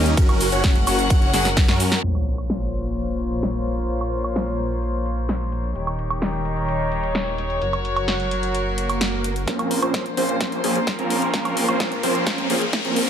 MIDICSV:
0, 0, Header, 1, 8, 480
1, 0, Start_track
1, 0, Key_signature, -5, "minor"
1, 0, Tempo, 465116
1, 180, Time_signature, 4, 2, 24, 8
1, 13518, End_track
2, 0, Start_track
2, 0, Title_t, "String section"
2, 0, Program_c, 0, 48
2, 0, Note_on_c, 0, 51, 84
2, 0, Note_on_c, 0, 61, 80
2, 0, Note_on_c, 0, 67, 77
2, 0, Note_on_c, 0, 75, 92
2, 160, Note_off_c, 0, 51, 0
2, 160, Note_off_c, 0, 67, 0
2, 161, Note_off_c, 0, 75, 0
2, 181, Note_on_c, 0, 54, 81
2, 181, Note_on_c, 0, 70, 79
2, 181, Note_on_c, 0, 78, 96
2, 2061, Note_off_c, 0, 61, 0
2, 2081, Note_off_c, 0, 54, 0
2, 2081, Note_off_c, 0, 70, 0
2, 2081, Note_off_c, 0, 78, 0
2, 2098, Note_on_c, 0, 65, 70
2, 2099, Note_on_c, 0, 58, 77
2, 2099, Note_on_c, 0, 72, 71
2, 2099, Note_on_c, 0, 73, 85
2, 5901, Note_off_c, 0, 58, 0
2, 5901, Note_off_c, 0, 65, 0
2, 5901, Note_off_c, 0, 72, 0
2, 5901, Note_off_c, 0, 73, 0
2, 5939, Note_on_c, 0, 73, 89
2, 5940, Note_on_c, 0, 51, 81
2, 5940, Note_on_c, 0, 63, 72
2, 5940, Note_on_c, 0, 67, 71
2, 7841, Note_off_c, 0, 51, 0
2, 7841, Note_off_c, 0, 63, 0
2, 7841, Note_off_c, 0, 67, 0
2, 7860, Note_on_c, 0, 54, 82
2, 7860, Note_on_c, 0, 66, 75
2, 7860, Note_on_c, 0, 70, 75
2, 9741, Note_off_c, 0, 73, 0
2, 9760, Note_off_c, 0, 66, 0
2, 9761, Note_off_c, 0, 54, 0
2, 9761, Note_off_c, 0, 70, 0
2, 9779, Note_on_c, 0, 58, 81
2, 9779, Note_on_c, 0, 65, 72
2, 9779, Note_on_c, 0, 72, 74
2, 11680, Note_off_c, 0, 72, 0
2, 11699, Note_on_c, 0, 70, 74
2, 13518, Note_off_c, 0, 58, 0
2, 13518, Note_off_c, 0, 65, 0
2, 13518, Note_off_c, 0, 70, 0
2, 13518, End_track
3, 0, Start_track
3, 0, Title_t, "Supersaw synth"
3, 0, Program_c, 1, 81
3, 0, Note_on_c, 1, 55, 75
3, 0, Note_on_c, 1, 58, 69
3, 0, Note_on_c, 1, 61, 68
3, 0, Note_on_c, 1, 63, 68
3, 0, Note_on_c, 1, 70, 81
3, 150, Note_off_c, 1, 55, 0
3, 150, Note_off_c, 1, 70, 0
3, 151, Note_off_c, 1, 58, 0
3, 151, Note_off_c, 1, 61, 0
3, 151, Note_off_c, 1, 63, 0
3, 178, Note_on_c, 1, 61, 81
3, 179, Note_on_c, 1, 66, 79
3, 179, Note_on_c, 1, 70, 90
3, 510, Note_off_c, 1, 61, 0
3, 510, Note_off_c, 1, 66, 0
3, 510, Note_off_c, 1, 70, 0
3, 539, Note_on_c, 1, 61, 92
3, 539, Note_on_c, 1, 66, 81
3, 539, Note_on_c, 1, 73, 98
3, 774, Note_off_c, 1, 61, 0
3, 774, Note_off_c, 1, 66, 0
3, 774, Note_off_c, 1, 73, 0
3, 899, Note_on_c, 1, 61, 76
3, 899, Note_on_c, 1, 66, 70
3, 899, Note_on_c, 1, 73, 85
3, 1350, Note_off_c, 1, 61, 0
3, 1350, Note_off_c, 1, 73, 0
3, 1351, Note_off_c, 1, 66, 0
3, 1379, Note_on_c, 1, 61, 89
3, 1379, Note_on_c, 1, 66, 79
3, 1379, Note_on_c, 1, 68, 97
3, 1526, Note_off_c, 1, 61, 0
3, 1526, Note_off_c, 1, 66, 0
3, 1526, Note_off_c, 1, 68, 0
3, 1739, Note_on_c, 1, 61, 73
3, 1739, Note_on_c, 1, 66, 67
3, 1740, Note_on_c, 1, 70, 81
3, 2071, Note_off_c, 1, 61, 0
3, 2071, Note_off_c, 1, 66, 0
3, 2071, Note_off_c, 1, 70, 0
3, 9779, Note_on_c, 1, 53, 83
3, 9779, Note_on_c, 1, 58, 74
3, 9779, Note_on_c, 1, 60, 74
3, 9779, Note_on_c, 1, 61, 76
3, 9779, Note_on_c, 1, 70, 93
3, 10111, Note_off_c, 1, 53, 0
3, 10111, Note_off_c, 1, 58, 0
3, 10111, Note_off_c, 1, 60, 0
3, 10111, Note_off_c, 1, 61, 0
3, 10111, Note_off_c, 1, 70, 0
3, 10138, Note_on_c, 1, 53, 83
3, 10138, Note_on_c, 1, 58, 79
3, 10138, Note_on_c, 1, 60, 77
3, 10138, Note_on_c, 1, 61, 78
3, 10138, Note_on_c, 1, 72, 94
3, 10373, Note_off_c, 1, 53, 0
3, 10373, Note_off_c, 1, 58, 0
3, 10373, Note_off_c, 1, 60, 0
3, 10373, Note_off_c, 1, 61, 0
3, 10373, Note_off_c, 1, 72, 0
3, 10498, Note_on_c, 1, 53, 74
3, 10498, Note_on_c, 1, 58, 70
3, 10498, Note_on_c, 1, 60, 69
3, 10498, Note_on_c, 1, 61, 67
3, 10498, Note_on_c, 1, 72, 84
3, 10950, Note_off_c, 1, 53, 0
3, 10950, Note_off_c, 1, 58, 0
3, 10950, Note_off_c, 1, 60, 0
3, 10950, Note_off_c, 1, 61, 0
3, 10950, Note_off_c, 1, 72, 0
3, 10978, Note_on_c, 1, 53, 86
3, 10978, Note_on_c, 1, 58, 79
3, 10978, Note_on_c, 1, 60, 81
3, 10978, Note_on_c, 1, 61, 79
3, 10978, Note_on_c, 1, 68, 96
3, 11125, Note_off_c, 1, 53, 0
3, 11125, Note_off_c, 1, 58, 0
3, 11125, Note_off_c, 1, 60, 0
3, 11125, Note_off_c, 1, 61, 0
3, 11125, Note_off_c, 1, 68, 0
3, 11337, Note_on_c, 1, 53, 74
3, 11338, Note_on_c, 1, 58, 66
3, 11338, Note_on_c, 1, 60, 68
3, 11338, Note_on_c, 1, 61, 66
3, 11338, Note_on_c, 1, 70, 80
3, 11670, Note_off_c, 1, 53, 0
3, 11670, Note_off_c, 1, 58, 0
3, 11670, Note_off_c, 1, 60, 0
3, 11670, Note_off_c, 1, 61, 0
3, 11670, Note_off_c, 1, 70, 0
3, 11698, Note_on_c, 1, 53, 83
3, 11698, Note_on_c, 1, 60, 79
3, 11699, Note_on_c, 1, 58, 75
3, 11699, Note_on_c, 1, 61, 76
3, 11699, Note_on_c, 1, 70, 90
3, 12030, Note_off_c, 1, 53, 0
3, 12030, Note_off_c, 1, 58, 0
3, 12030, Note_off_c, 1, 60, 0
3, 12030, Note_off_c, 1, 61, 0
3, 12030, Note_off_c, 1, 70, 0
3, 12058, Note_on_c, 1, 53, 86
3, 12058, Note_on_c, 1, 58, 77
3, 12058, Note_on_c, 1, 60, 78
3, 12058, Note_on_c, 1, 61, 81
3, 12058, Note_on_c, 1, 72, 97
3, 12293, Note_off_c, 1, 58, 0
3, 12293, Note_off_c, 1, 60, 0
3, 12293, Note_off_c, 1, 72, 0
3, 12294, Note_off_c, 1, 53, 0
3, 12294, Note_off_c, 1, 61, 0
3, 12419, Note_on_c, 1, 53, 76
3, 12419, Note_on_c, 1, 58, 68
3, 12419, Note_on_c, 1, 60, 71
3, 12419, Note_on_c, 1, 61, 70
3, 12419, Note_on_c, 1, 72, 81
3, 12870, Note_off_c, 1, 53, 0
3, 12870, Note_off_c, 1, 58, 0
3, 12870, Note_off_c, 1, 60, 0
3, 12870, Note_off_c, 1, 61, 0
3, 12870, Note_off_c, 1, 72, 0
3, 12899, Note_on_c, 1, 53, 87
3, 12899, Note_on_c, 1, 58, 79
3, 12899, Note_on_c, 1, 60, 82
3, 12899, Note_on_c, 1, 61, 79
3, 12899, Note_on_c, 1, 68, 95
3, 13046, Note_off_c, 1, 53, 0
3, 13046, Note_off_c, 1, 58, 0
3, 13046, Note_off_c, 1, 60, 0
3, 13046, Note_off_c, 1, 61, 0
3, 13046, Note_off_c, 1, 68, 0
3, 13259, Note_on_c, 1, 53, 74
3, 13259, Note_on_c, 1, 58, 68
3, 13259, Note_on_c, 1, 60, 67
3, 13259, Note_on_c, 1, 61, 65
3, 13259, Note_on_c, 1, 70, 81
3, 13518, Note_off_c, 1, 53, 0
3, 13518, Note_off_c, 1, 58, 0
3, 13518, Note_off_c, 1, 60, 0
3, 13518, Note_off_c, 1, 61, 0
3, 13518, Note_off_c, 1, 70, 0
3, 13518, End_track
4, 0, Start_track
4, 0, Title_t, "Detuned saw bass"
4, 0, Program_c, 2, 39
4, 0, Note_on_c, 2, 39, 97
4, 156, Note_off_c, 2, 39, 0
4, 180, Note_on_c, 2, 30, 101
4, 516, Note_off_c, 2, 30, 0
4, 540, Note_on_c, 2, 30, 99
4, 876, Note_off_c, 2, 30, 0
4, 900, Note_on_c, 2, 30, 97
4, 1356, Note_off_c, 2, 30, 0
4, 1380, Note_on_c, 2, 30, 97
4, 1716, Note_off_c, 2, 30, 0
4, 1739, Note_on_c, 2, 42, 100
4, 2075, Note_off_c, 2, 42, 0
4, 2100, Note_on_c, 2, 34, 89
4, 5916, Note_off_c, 2, 34, 0
4, 5940, Note_on_c, 2, 27, 88
4, 7836, Note_off_c, 2, 27, 0
4, 7859, Note_on_c, 2, 30, 90
4, 9755, Note_off_c, 2, 30, 0
4, 9779, Note_on_c, 2, 34, 95
4, 10115, Note_off_c, 2, 34, 0
4, 10139, Note_on_c, 2, 34, 97
4, 10475, Note_off_c, 2, 34, 0
4, 10499, Note_on_c, 2, 34, 96
4, 10955, Note_off_c, 2, 34, 0
4, 10979, Note_on_c, 2, 34, 98
4, 11316, Note_off_c, 2, 34, 0
4, 11339, Note_on_c, 2, 34, 94
4, 11675, Note_off_c, 2, 34, 0
4, 11699, Note_on_c, 2, 34, 97
4, 12035, Note_off_c, 2, 34, 0
4, 12059, Note_on_c, 2, 34, 96
4, 12395, Note_off_c, 2, 34, 0
4, 12419, Note_on_c, 2, 34, 99
4, 12875, Note_off_c, 2, 34, 0
4, 12899, Note_on_c, 2, 34, 96
4, 13235, Note_off_c, 2, 34, 0
4, 13259, Note_on_c, 2, 34, 96
4, 13518, Note_off_c, 2, 34, 0
4, 13518, End_track
5, 0, Start_track
5, 0, Title_t, "Riser"
5, 0, Program_c, 3, 103
5, 9779, Note_on_c, 3, 60, 82
5, 13518, Note_off_c, 3, 60, 0
5, 13518, End_track
6, 0, Start_track
6, 0, Title_t, "Sub drop"
6, 0, Program_c, 4, 103
6, 2099, Note_on_c, 4, 60, 69
6, 4019, Note_off_c, 4, 60, 0
6, 13518, End_track
7, 0, Start_track
7, 0, Title_t, "Swell"
7, 0, Program_c, 5, 103
7, 8819, Note_on_c, 5, 60, 75
7, 9779, Note_off_c, 5, 60, 0
7, 13518, End_track
8, 0, Start_track
8, 0, Title_t, "Drums"
8, 60, Note_on_c, 9, 42, 54
8, 60, Note_on_c, 9, 82, 47
8, 163, Note_off_c, 9, 42, 0
8, 163, Note_off_c, 9, 82, 0
8, 180, Note_on_c, 9, 36, 117
8, 180, Note_on_c, 9, 42, 81
8, 180, Note_on_c, 9, 51, 65
8, 180, Note_on_c, 9, 82, 35
8, 283, Note_off_c, 9, 36, 0
8, 283, Note_off_c, 9, 42, 0
8, 283, Note_off_c, 9, 51, 0
8, 283, Note_off_c, 9, 82, 0
8, 300, Note_on_c, 9, 42, 39
8, 300, Note_on_c, 9, 76, 67
8, 403, Note_off_c, 9, 42, 0
8, 403, Note_off_c, 9, 76, 0
8, 419, Note_on_c, 9, 46, 107
8, 419, Note_on_c, 9, 82, 85
8, 523, Note_off_c, 9, 46, 0
8, 523, Note_off_c, 9, 82, 0
8, 539, Note_on_c, 9, 42, 54
8, 539, Note_on_c, 9, 82, 45
8, 642, Note_off_c, 9, 42, 0
8, 642, Note_off_c, 9, 82, 0
8, 658, Note_on_c, 9, 38, 119
8, 659, Note_on_c, 9, 36, 119
8, 659, Note_on_c, 9, 42, 82
8, 659, Note_on_c, 9, 51, 65
8, 659, Note_on_c, 9, 82, 35
8, 761, Note_off_c, 9, 38, 0
8, 762, Note_off_c, 9, 42, 0
8, 762, Note_off_c, 9, 51, 0
8, 762, Note_off_c, 9, 82, 0
8, 763, Note_off_c, 9, 36, 0
8, 779, Note_on_c, 9, 42, 39
8, 882, Note_off_c, 9, 42, 0
8, 899, Note_on_c, 9, 46, 108
8, 899, Note_on_c, 9, 76, 65
8, 899, Note_on_c, 9, 82, 85
8, 1002, Note_off_c, 9, 46, 0
8, 1002, Note_off_c, 9, 76, 0
8, 1002, Note_off_c, 9, 82, 0
8, 1019, Note_on_c, 9, 42, 57
8, 1019, Note_on_c, 9, 82, 47
8, 1122, Note_off_c, 9, 42, 0
8, 1122, Note_off_c, 9, 82, 0
8, 1139, Note_on_c, 9, 36, 115
8, 1139, Note_on_c, 9, 42, 89
8, 1139, Note_on_c, 9, 51, 69
8, 1139, Note_on_c, 9, 82, 37
8, 1242, Note_off_c, 9, 36, 0
8, 1242, Note_off_c, 9, 42, 0
8, 1242, Note_off_c, 9, 51, 0
8, 1242, Note_off_c, 9, 82, 0
8, 1258, Note_on_c, 9, 42, 39
8, 1361, Note_off_c, 9, 42, 0
8, 1378, Note_on_c, 9, 38, 62
8, 1378, Note_on_c, 9, 46, 105
8, 1378, Note_on_c, 9, 82, 81
8, 1481, Note_off_c, 9, 38, 0
8, 1481, Note_off_c, 9, 46, 0
8, 1482, Note_off_c, 9, 82, 0
8, 1499, Note_on_c, 9, 38, 64
8, 1499, Note_on_c, 9, 42, 59
8, 1499, Note_on_c, 9, 82, 48
8, 1602, Note_off_c, 9, 38, 0
8, 1602, Note_off_c, 9, 42, 0
8, 1602, Note_off_c, 9, 82, 0
8, 1619, Note_on_c, 9, 36, 114
8, 1619, Note_on_c, 9, 38, 77
8, 1619, Note_on_c, 9, 42, 82
8, 1619, Note_on_c, 9, 51, 69
8, 1619, Note_on_c, 9, 82, 35
8, 1722, Note_off_c, 9, 36, 0
8, 1722, Note_off_c, 9, 38, 0
8, 1722, Note_off_c, 9, 42, 0
8, 1722, Note_off_c, 9, 51, 0
8, 1722, Note_off_c, 9, 82, 0
8, 1739, Note_on_c, 9, 38, 76
8, 1739, Note_on_c, 9, 42, 41
8, 1842, Note_off_c, 9, 38, 0
8, 1842, Note_off_c, 9, 42, 0
8, 1858, Note_on_c, 9, 46, 105
8, 1859, Note_on_c, 9, 82, 85
8, 1962, Note_off_c, 9, 46, 0
8, 1962, Note_off_c, 9, 82, 0
8, 1978, Note_on_c, 9, 38, 87
8, 1978, Note_on_c, 9, 42, 56
8, 1979, Note_on_c, 9, 82, 45
8, 2082, Note_off_c, 9, 38, 0
8, 2082, Note_off_c, 9, 42, 0
8, 2082, Note_off_c, 9, 82, 0
8, 2098, Note_on_c, 9, 42, 77
8, 2201, Note_off_c, 9, 42, 0
8, 2218, Note_on_c, 9, 76, 59
8, 2322, Note_off_c, 9, 76, 0
8, 2338, Note_on_c, 9, 42, 82
8, 2441, Note_off_c, 9, 42, 0
8, 2459, Note_on_c, 9, 42, 49
8, 2459, Note_on_c, 9, 76, 66
8, 2562, Note_off_c, 9, 42, 0
8, 2562, Note_off_c, 9, 76, 0
8, 2577, Note_on_c, 9, 38, 114
8, 2579, Note_on_c, 9, 42, 75
8, 2681, Note_off_c, 9, 38, 0
8, 2682, Note_off_c, 9, 42, 0
8, 2699, Note_on_c, 9, 42, 36
8, 2802, Note_off_c, 9, 42, 0
8, 2819, Note_on_c, 9, 42, 75
8, 2922, Note_off_c, 9, 42, 0
8, 2939, Note_on_c, 9, 42, 53
8, 3042, Note_off_c, 9, 42, 0
8, 3059, Note_on_c, 9, 42, 80
8, 3162, Note_off_c, 9, 42, 0
8, 3299, Note_on_c, 9, 42, 82
8, 3402, Note_off_c, 9, 42, 0
8, 3419, Note_on_c, 9, 42, 54
8, 3522, Note_off_c, 9, 42, 0
8, 3538, Note_on_c, 9, 38, 114
8, 3540, Note_on_c, 9, 42, 76
8, 3641, Note_off_c, 9, 38, 0
8, 3643, Note_off_c, 9, 42, 0
8, 3780, Note_on_c, 9, 42, 79
8, 3883, Note_off_c, 9, 42, 0
8, 3900, Note_on_c, 9, 42, 50
8, 4003, Note_off_c, 9, 42, 0
8, 4019, Note_on_c, 9, 42, 73
8, 4123, Note_off_c, 9, 42, 0
8, 4139, Note_on_c, 9, 42, 37
8, 4139, Note_on_c, 9, 76, 64
8, 4243, Note_off_c, 9, 42, 0
8, 4243, Note_off_c, 9, 76, 0
8, 4260, Note_on_c, 9, 42, 79
8, 4363, Note_off_c, 9, 42, 0
8, 4380, Note_on_c, 9, 42, 49
8, 4380, Note_on_c, 9, 76, 72
8, 4483, Note_off_c, 9, 42, 0
8, 4483, Note_off_c, 9, 76, 0
8, 4498, Note_on_c, 9, 38, 114
8, 4499, Note_on_c, 9, 42, 75
8, 4601, Note_off_c, 9, 38, 0
8, 4603, Note_off_c, 9, 42, 0
8, 4620, Note_on_c, 9, 42, 35
8, 4723, Note_off_c, 9, 42, 0
8, 4740, Note_on_c, 9, 42, 78
8, 4843, Note_off_c, 9, 42, 0
8, 4860, Note_on_c, 9, 42, 52
8, 4963, Note_off_c, 9, 42, 0
8, 4980, Note_on_c, 9, 42, 80
8, 5083, Note_off_c, 9, 42, 0
8, 5220, Note_on_c, 9, 42, 75
8, 5323, Note_off_c, 9, 42, 0
8, 5340, Note_on_c, 9, 42, 52
8, 5443, Note_off_c, 9, 42, 0
8, 5459, Note_on_c, 9, 38, 116
8, 5460, Note_on_c, 9, 42, 77
8, 5562, Note_off_c, 9, 38, 0
8, 5563, Note_off_c, 9, 42, 0
8, 5699, Note_on_c, 9, 42, 73
8, 5803, Note_off_c, 9, 42, 0
8, 5819, Note_on_c, 9, 42, 50
8, 5923, Note_off_c, 9, 42, 0
8, 5939, Note_on_c, 9, 42, 70
8, 6042, Note_off_c, 9, 42, 0
8, 6059, Note_on_c, 9, 42, 36
8, 6059, Note_on_c, 9, 76, 64
8, 6163, Note_off_c, 9, 42, 0
8, 6163, Note_off_c, 9, 76, 0
8, 6179, Note_on_c, 9, 42, 75
8, 6282, Note_off_c, 9, 42, 0
8, 6300, Note_on_c, 9, 42, 48
8, 6300, Note_on_c, 9, 76, 76
8, 6403, Note_off_c, 9, 42, 0
8, 6403, Note_off_c, 9, 76, 0
8, 6418, Note_on_c, 9, 38, 110
8, 6419, Note_on_c, 9, 42, 71
8, 6521, Note_off_c, 9, 38, 0
8, 6522, Note_off_c, 9, 42, 0
8, 6539, Note_on_c, 9, 42, 34
8, 6643, Note_off_c, 9, 42, 0
8, 6659, Note_on_c, 9, 42, 75
8, 6763, Note_off_c, 9, 42, 0
8, 6779, Note_on_c, 9, 42, 52
8, 6882, Note_off_c, 9, 42, 0
8, 6899, Note_on_c, 9, 42, 74
8, 7002, Note_off_c, 9, 42, 0
8, 7140, Note_on_c, 9, 42, 74
8, 7243, Note_off_c, 9, 42, 0
8, 7260, Note_on_c, 9, 42, 50
8, 7363, Note_off_c, 9, 42, 0
8, 7378, Note_on_c, 9, 38, 120
8, 7380, Note_on_c, 9, 42, 74
8, 7481, Note_off_c, 9, 38, 0
8, 7483, Note_off_c, 9, 42, 0
8, 7620, Note_on_c, 9, 42, 74
8, 7723, Note_off_c, 9, 42, 0
8, 7740, Note_on_c, 9, 42, 48
8, 7843, Note_off_c, 9, 42, 0
8, 7860, Note_on_c, 9, 42, 68
8, 7963, Note_off_c, 9, 42, 0
8, 7980, Note_on_c, 9, 42, 35
8, 7980, Note_on_c, 9, 76, 69
8, 8083, Note_off_c, 9, 42, 0
8, 8083, Note_off_c, 9, 76, 0
8, 8100, Note_on_c, 9, 42, 73
8, 8203, Note_off_c, 9, 42, 0
8, 8220, Note_on_c, 9, 42, 46
8, 8220, Note_on_c, 9, 76, 76
8, 8323, Note_off_c, 9, 42, 0
8, 8323, Note_off_c, 9, 76, 0
8, 8338, Note_on_c, 9, 38, 110
8, 8339, Note_on_c, 9, 42, 73
8, 8441, Note_off_c, 9, 38, 0
8, 8442, Note_off_c, 9, 42, 0
8, 8459, Note_on_c, 9, 42, 33
8, 8562, Note_off_c, 9, 42, 0
8, 8580, Note_on_c, 9, 42, 72
8, 8683, Note_off_c, 9, 42, 0
8, 8699, Note_on_c, 9, 42, 51
8, 8803, Note_off_c, 9, 42, 0
8, 8819, Note_on_c, 9, 42, 74
8, 8922, Note_off_c, 9, 42, 0
8, 9059, Note_on_c, 9, 42, 74
8, 9162, Note_off_c, 9, 42, 0
8, 9179, Note_on_c, 9, 42, 50
8, 9179, Note_on_c, 9, 76, 64
8, 9283, Note_off_c, 9, 42, 0
8, 9283, Note_off_c, 9, 76, 0
8, 9298, Note_on_c, 9, 38, 113
8, 9299, Note_on_c, 9, 42, 72
8, 9401, Note_off_c, 9, 38, 0
8, 9402, Note_off_c, 9, 42, 0
8, 9540, Note_on_c, 9, 42, 74
8, 9643, Note_off_c, 9, 42, 0
8, 9659, Note_on_c, 9, 42, 48
8, 9762, Note_off_c, 9, 42, 0
8, 9779, Note_on_c, 9, 36, 116
8, 9779, Note_on_c, 9, 38, 46
8, 9779, Note_on_c, 9, 42, 67
8, 9882, Note_off_c, 9, 36, 0
8, 9882, Note_off_c, 9, 38, 0
8, 9882, Note_off_c, 9, 42, 0
8, 9899, Note_on_c, 9, 42, 42
8, 9899, Note_on_c, 9, 76, 65
8, 10003, Note_off_c, 9, 42, 0
8, 10003, Note_off_c, 9, 76, 0
8, 10019, Note_on_c, 9, 46, 109
8, 10122, Note_off_c, 9, 46, 0
8, 10139, Note_on_c, 9, 42, 39
8, 10139, Note_on_c, 9, 76, 72
8, 10243, Note_off_c, 9, 42, 0
8, 10243, Note_off_c, 9, 76, 0
8, 10259, Note_on_c, 9, 36, 116
8, 10259, Note_on_c, 9, 38, 49
8, 10259, Note_on_c, 9, 42, 65
8, 10362, Note_off_c, 9, 36, 0
8, 10363, Note_off_c, 9, 38, 0
8, 10363, Note_off_c, 9, 42, 0
8, 10380, Note_on_c, 9, 42, 41
8, 10483, Note_off_c, 9, 42, 0
8, 10499, Note_on_c, 9, 46, 105
8, 10602, Note_off_c, 9, 46, 0
8, 10619, Note_on_c, 9, 42, 40
8, 10723, Note_off_c, 9, 42, 0
8, 10739, Note_on_c, 9, 36, 121
8, 10739, Note_on_c, 9, 38, 53
8, 10739, Note_on_c, 9, 42, 69
8, 10842, Note_off_c, 9, 36, 0
8, 10842, Note_off_c, 9, 38, 0
8, 10842, Note_off_c, 9, 42, 0
8, 10859, Note_on_c, 9, 42, 41
8, 10962, Note_off_c, 9, 42, 0
8, 10979, Note_on_c, 9, 46, 106
8, 11082, Note_off_c, 9, 46, 0
8, 11099, Note_on_c, 9, 42, 43
8, 11202, Note_off_c, 9, 42, 0
8, 11219, Note_on_c, 9, 36, 113
8, 11219, Note_on_c, 9, 38, 54
8, 11219, Note_on_c, 9, 42, 65
8, 11322, Note_off_c, 9, 36, 0
8, 11323, Note_off_c, 9, 38, 0
8, 11323, Note_off_c, 9, 42, 0
8, 11340, Note_on_c, 9, 42, 41
8, 11443, Note_off_c, 9, 42, 0
8, 11459, Note_on_c, 9, 46, 104
8, 11562, Note_off_c, 9, 46, 0
8, 11579, Note_on_c, 9, 42, 40
8, 11682, Note_off_c, 9, 42, 0
8, 11699, Note_on_c, 9, 36, 117
8, 11699, Note_on_c, 9, 38, 54
8, 11699, Note_on_c, 9, 42, 61
8, 11802, Note_off_c, 9, 36, 0
8, 11802, Note_off_c, 9, 38, 0
8, 11802, Note_off_c, 9, 42, 0
8, 11819, Note_on_c, 9, 42, 41
8, 11819, Note_on_c, 9, 76, 64
8, 11922, Note_off_c, 9, 42, 0
8, 11922, Note_off_c, 9, 76, 0
8, 11939, Note_on_c, 9, 46, 110
8, 12042, Note_off_c, 9, 46, 0
8, 12059, Note_on_c, 9, 42, 39
8, 12059, Note_on_c, 9, 76, 76
8, 12162, Note_off_c, 9, 42, 0
8, 12162, Note_off_c, 9, 76, 0
8, 12179, Note_on_c, 9, 36, 123
8, 12179, Note_on_c, 9, 38, 59
8, 12179, Note_on_c, 9, 42, 64
8, 12282, Note_off_c, 9, 36, 0
8, 12282, Note_off_c, 9, 38, 0
8, 12282, Note_off_c, 9, 42, 0
8, 12299, Note_on_c, 9, 42, 40
8, 12402, Note_off_c, 9, 42, 0
8, 12419, Note_on_c, 9, 46, 110
8, 12522, Note_off_c, 9, 46, 0
8, 12539, Note_on_c, 9, 42, 41
8, 12642, Note_off_c, 9, 42, 0
8, 12658, Note_on_c, 9, 38, 68
8, 12658, Note_on_c, 9, 42, 70
8, 12659, Note_on_c, 9, 36, 125
8, 12762, Note_off_c, 9, 36, 0
8, 12762, Note_off_c, 9, 38, 0
8, 12762, Note_off_c, 9, 42, 0
8, 12779, Note_on_c, 9, 42, 40
8, 12882, Note_off_c, 9, 42, 0
8, 12898, Note_on_c, 9, 46, 108
8, 13002, Note_off_c, 9, 46, 0
8, 13019, Note_on_c, 9, 42, 40
8, 13122, Note_off_c, 9, 42, 0
8, 13138, Note_on_c, 9, 38, 69
8, 13138, Note_on_c, 9, 42, 67
8, 13139, Note_on_c, 9, 36, 118
8, 13241, Note_off_c, 9, 38, 0
8, 13241, Note_off_c, 9, 42, 0
8, 13242, Note_off_c, 9, 36, 0
8, 13258, Note_on_c, 9, 42, 40
8, 13362, Note_off_c, 9, 42, 0
8, 13379, Note_on_c, 9, 46, 104
8, 13482, Note_off_c, 9, 46, 0
8, 13518, End_track
0, 0, End_of_file